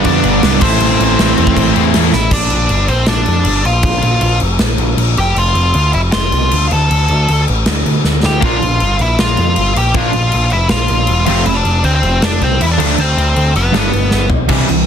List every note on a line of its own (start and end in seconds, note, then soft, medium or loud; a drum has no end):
0.00 0.40 G2 medium
0.00 0.60 G2 loud
0.00 0.41 D3 medium
0.00 0.61 D3 loud
0.00 0.42 G3 medium
0.00 0.61 G3 loud
0.00 0.41 B3 medium
0.00 0.62 B3 loud
0.00 0.41 D4 medium
0.00 0.62 D4 loud
0.04 0.21 F2 medium
0.04 0.58 D4 medium
0.04 0.58 D5 loud
0.04 kick medium
0.04 crash medium
0.24 0.39 G1 loud
0.24 crash medium
0.41 0.58 C2 loud
0.41 0.60 G2 medium
0.41 0.60 D3 medium
0.41 0.61 G3 loud
0.41 0.61 B3 loud
0.41 0.62 D4 medium
0.41 snare loud
0.41 crash medium
0.61 0.77 A1 medium
0.61 1.17 A2 medium
0.61 1.18 E3 medium
0.61 1.18 A3 loud
0.61 1.90 C4 medium
0.61 1.18 C4 loud
0.61 1.18 E4 loud
0.61 1.90 C5 loud
0.61 kick loud
0.61 crash loud
0.80 0.96 A1 loud
0.80 crash loud
0.99 1.15 A1 medium
0.99 crash medium
1.18 1.34 A1 medium
1.18 1.74 A2 medium
1.18 1.74 E3 medium
1.18 1.74 A3 medium
1.18 1.74 C4 loud
1.18 1.72 E4 medium
1.18 snare loud
1.18 crash medium
1.38 1.53 E2 loud
1.38 crash medium
1.47 kick medium
1.57 1.72 A1 loud
1.57 kick loud
1.57 crash medium
1.73 1.91 E2 loud
1.73 2.13 E3 medium
1.73 2.12 A3 medium
1.73 2.12 C4 medium
1.73 2.11 E4 medium
1.73 crash medium
1.77 2.13 A2 medium
1.94 2.10 E2 loud
1.94 snare loud
1.94 crash loud
2.13 2.29 A1 loud
2.13 2.31 E4 medium
2.13 2.32 E5 loud
2.13 snare medium
2.31 2.49 A#1 medium
2.31 2.86 D4 medium
2.31 2.90 D5 medium
2.31 kick loud
2.31 crash loud
2.31 crash medium
2.50 2.68 A#1 medium
2.50 crash medium
2.69 2.87 G1 medium
2.69 crash medium
2.88 3.06 A#1 medium
2.88 3.07 C4 medium
2.88 3.07 C5 medium
2.88 crash medium
3.06 3.25 A#1 loud
3.06 3.61 D4 medium
3.06 3.66 D5 medium
3.06 snare loud
3.06 crash medium
3.26 3.44 F2 loud
3.26 crash medium
3.45 3.62 G1 medium
3.45 crash medium
3.65 3.82 A#1 medium
3.65 4.37 F4 medium
3.65 4.38 F5 loud
3.65 crash medium
3.83 4.01 A#1 medium
3.83 kick loud
3.83 crash medium
4.02 4.20 A#1 loud
4.02 crash medium
4.21 4.39 A#1 medium
4.21 crash medium
4.40 4.58 F1 medium
4.40 crash medium
4.59 4.77 A#1 medium
4.59 snare loud
4.59 crash medium
4.77 4.95 A#1 loud
4.77 crash medium
4.97 5.15 A#1 medium
4.97 crash medium
5.17 5.34 F1 loud
5.17 5.36 G4 medium
5.17 5.39 G5 medium
5.17 crash medium
5.35 5.53 F1 medium
5.35 5.91 F4 medium
5.35 crash medium
5.39 5.94 F5 medium
5.55 5.72 F1 loud
5.55 crash medium
5.74 5.92 D2 medium
5.74 crash medium
5.93 6.11 F1 medium
5.93 5.99 E4 medium
5.93 5.99 E5 medium
5.93 crash medium
6.12 6.31 F1 medium
6.12 6.66 F4 medium
6.12 6.72 F5 loud
6.12 snare loud
6.12 crash medium
6.32 6.50 C2 loud
6.32 crash medium
6.51 6.69 D2 medium
6.51 crash medium
6.71 6.88 D2 medium
6.71 7.44 A4 medium
6.71 7.44 A5 loud
6.71 crash medium
6.90 7.07 D2 loud
6.90 crash medium
7.08 7.26 D2 medium
7.08 crash medium
7.28 7.45 D2 medium
7.28 crash medium
7.48 7.65 A1 medium
7.48 crash medium
7.66 7.84 D2 loud
7.66 snare loud
7.66 crash medium
7.86 8.02 D2 loud
7.86 crash medium
8.04 8.21 D2 medium
8.04 snare medium
8.23 8.40 D2 loud
8.23 8.42 G4 medium
8.23 8.42 G5 loud
8.23 snare medium
8.40 8.60 A#1 loud
8.40 8.56 A#2 medium
8.40 8.56 F3 medium
8.40 8.56 A#3 medium
8.40 8.57 D4 medium
8.40 8.96 F4 medium
8.40 kick loud
8.40 crash medium
8.44 9.02 F5 loud
8.62 8.79 A#1 medium
8.62 crash medium
8.80 8.98 G1 medium
8.80 crash medium
8.99 9.16 A#1 medium
8.99 9.18 E4 medium
8.99 9.20 E5 loud
8.99 crash medium
9.19 9.36 A#1 medium
9.19 9.72 F4 medium
9.19 9.78 F5 loud
9.19 snare loud
9.19 crash medium
9.37 9.55 F2 medium
9.37 crash medium
9.56 9.74 G1 medium
9.56 crash medium
9.75 9.92 A#1 medium
9.75 9.94 G4 medium
9.75 9.96 G5 loud
9.75 crash medium
9.94 10.12 A#1 medium
9.94 10.09 A#2 loud
9.94 10.09 F3 loud
9.94 10.10 A#3 loud
9.94 10.10 D4 loud
9.94 10.49 F4 medium
9.94 10.52 F5 loud
9.94 kick loud
9.94 crash medium
10.13 10.31 A#1 medium
10.13 crash medium
10.32 10.50 A#1 medium
10.32 crash medium
10.50 10.69 F1 medium
10.50 10.70 E4 medium
10.50 10.69 E5 loud
10.50 crash medium
10.69 10.87 A#1 medium
10.69 11.24 F4 medium
10.69 11.24 F5 loud
10.69 snare loud
10.69 crash medium
10.88 11.07 A#1 medium
10.88 crash medium
11.07 11.26 E1 medium
11.07 crash medium
11.25 11.45 F1 medium
11.25 11.42 F2 loud
11.25 11.42 C3 medium
11.25 11.43 F3 loud
11.25 11.43 A3 loud
11.25 11.43 C4 loud
11.25 11.45 F4 medium
11.25 11.46 F5 loud
11.25 crash loud
11.46 11.63 F1 medium
11.46 11.55 E4 medium
11.46 11.54 E5 loud
11.46 crash medium
11.54 11.82 D4 medium
11.54 11.84 D5 loud
11.65 11.82 F1 medium
11.65 crash medium
11.84 12.01 D2 medium
11.84 11.94 C4 medium
11.84 11.94 C5 medium
11.84 crash medium
11.95 12.21 C4 medium
11.95 12.24 C5 medium
12.03 12.20 F1 loud
12.03 crash medium
12.22 12.39 F1 loud
12.22 12.41 D4 medium
12.22 12.42 D5 loud
12.22 snare loud
12.22 crash medium
12.41 12.58 C2 loud
12.41 12.60 C4 medium
12.41 12.61 C5 medium
12.41 crash medium
12.60 12.77 E2 medium
12.60 12.67 E4 medium
12.60 12.66 E5 medium
12.60 crash medium
12.71 12.98 D4 medium
12.71 13.00 D5 medium
12.78 12.97 D2 medium
12.78 12.94 D3 medium
12.78 12.94 F3 medium
12.78 12.94 A3 loud
12.78 12.95 D4 loud
12.78 crash loud
12.98 13.15 D2 loud
12.98 13.53 C4 medium
12.98 13.52 C5 medium
12.98 crash medium
13.17 13.34 D2 medium
13.17 crash medium
13.36 13.53 D2 medium
13.36 crash medium
13.55 13.72 F1 medium
13.55 14.28 B3 medium
13.55 14.27 B4 medium
13.55 crash medium
13.72 13.88 G2 medium
13.72 13.89 D3 medium
13.72 13.89 G3 loud
13.72 13.89 B3 loud
13.72 13.90 D4 loud
13.72 snare loud
13.72 crash medium
13.93 14.10 G1 medium
13.93 crash medium
14.11 14.29 G1 loud
14.11 snare medium
14.30 14.48 B1 loud
14.30 floor tom loud
14.49 14.63 C2 loud
14.49 14.67 C3 medium
14.49 14.67 E3 loud
14.49 14.68 G3 loud
14.49 kick loud
14.49 crash loud
14.49 crash medium
14.69 14.83 C2 medium
14.69 14.86 C3 medium
14.69 14.86 E3 medium
14.69 crash medium